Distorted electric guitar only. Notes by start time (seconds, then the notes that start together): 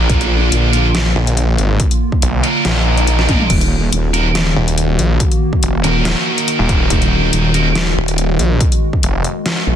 Already playing: D4 F4 A#4
0.73 D4 F4 A#4
2.43 D4 F4 A#4
3.19 D4 F4 A#4
3.28 D4 F4 A#4
4.14 D#4 F#4 A#4
5.84 D#4 F#4 A#4
7.54 D#4 F#4 A#4